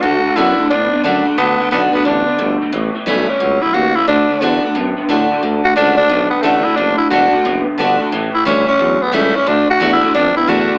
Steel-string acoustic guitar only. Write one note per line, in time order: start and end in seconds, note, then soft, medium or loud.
0.03 0.35 D3 medium
0.36 0.57 D3 medium
0.36 0.58 A3 medium
0.36 0.58 D4 medium
0.36 0.57 F#4 loud
0.58 0.71 D4 medium
0.58 0.70 F#4 medium
0.71 1.36 A2 medium
1.04 1.25 D3 medium
1.04 1.25 A3 medium
1.04 1.26 D4 medium
1.04 1.24 F#4 medium
1.25 1.38 D4 soft
1.25 1.37 F#4 medium
1.38 1.70 D3 medium
1.71 1.92 D3 medium
1.71 1.93 A3 medium
1.71 1.93 D4 medium
1.71 1.92 F#4 medium
1.93 2.06 D4 soft
1.93 2.05 F#4 medium
2.05 2.38 D3 medium
2.39 2.71 B2 medium
2.73 3.38 A2 loud
3.06 3.27 E3 medium
3.06 3.28 G3 medium
3.06 3.28 C#4 loud
3.06 3.26 E4 loud
3.28 3.41 C#4 soft
3.28 3.39 E4 medium
3.40 3.73 B2 medium
3.74 4.07 C#3 medium
4.08 4.40 D3 medium
4.41 4.62 D3 medium
4.41 4.62 A3 medium
4.41 4.63 D4 loud
4.41 4.62 F#4 medium
4.63 4.76 D4 soft
4.63 4.74 F#4 medium
4.75 5.40 A2 medium
5.09 5.41 D3 medium
5.09 5.42 A3 medium
5.09 5.42 D4 medium
5.09 5.42 F#4 medium
5.43 5.74 D3 medium
5.76 5.97 D3 medium
5.76 5.97 A3 loud
5.76 5.98 D4 medium
5.76 5.96 F#4 medium
5.97 6.10 D4 medium
5.97 6.09 F#4 medium
6.09 6.75 A2 medium
6.43 6.64 D3 medium
6.43 6.65 A3 loud
6.43 6.65 D4 loud
6.43 6.63 F#4 loud
6.65 6.78 D4 soft
6.65 6.77 F#4 medium
7.10 7.32 D3 medium
7.10 7.32 A3 medium
7.10 7.32 D4 loud
7.10 7.32 F#4 medium
7.33 7.45 D4 soft
7.33 7.44 F#4 medium
7.45 8.10 A2 medium
7.78 7.99 D3 medium
7.78 8.00 A3 medium
7.78 8.00 D4 loud
7.78 7.98 F#4 loud
8.00 8.13 D4 medium
8.00 8.11 F#4 medium
8.12 8.77 A2 medium
8.45 8.67 E3 medium
8.45 8.67 G3 medium
8.45 8.67 C#4 loud
8.45 8.66 E4 loud
8.67 8.80 C#4 medium
8.67 8.79 E4 medium
8.79 9.45 E2 medium
9.12 9.34 E3 medium
9.12 9.34 G3 medium
9.12 9.34 C#4 loud
9.12 9.33 E4 loud
9.34 9.47 C#4 soft
9.34 9.46 E4 medium
9.47 9.78 D3 loud
9.80 10.01 D3 medium
9.80 10.02 A3 medium
9.80 10.02 D4 medium
9.80 10.00 F#4 loud
10.01 10.15 D4 soft
10.01 10.14 F#4 medium
10.14 10.78 A2 medium
10.47 10.78 D3 medium
10.47 10.78 A3 medium
10.47 10.78 D4 loud
10.47 10.78 F#4 loud